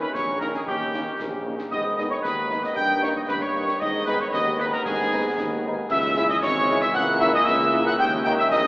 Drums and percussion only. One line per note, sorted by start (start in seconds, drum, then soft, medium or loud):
0.15 concert bass drum medium
0.15 snare medium
0.41 snare medium
0.54 snare medium
0.67 concert bass drum medium
0.94 snare medium
1.20 concert bass drum medium
1.20 snare medium
1.59 snare medium
1.72 concert bass drum medium
1.72 crash soft
1.99 snare medium
2.25 concert bass drum medium
2.25 snare medium
2.51 snare medium
2.64 snare medium
2.77 concert bass drum medium
3.04 snare medium
3.29 concert bass drum medium
3.29 snare medium
3.69 snare medium
3.82 concert bass drum medium
3.82 crash soft
4.08 snare medium
4.34 concert bass drum medium
4.34 snare medium
4.60 snare medium
4.73 snare medium
4.86 concert bass drum medium
4.86 snare medium
5.38 concert bass drum medium
5.38 snare medium
5.90 concert bass drum medium
5.90 crash medium
6.16 snare medium
6.42 concert bass drum medium
6.42 snare medium
6.69 snare medium
6.82 snare medium
6.95 concert bass drum medium
7.21 snare medium
7.48 concert bass drum medium
7.48 snare medium
7.87 snare medium
8.00 concert bass drum medium
8.00 crash soft
8.25 snare medium
8.51 concert bass drum medium
8.51 snare medium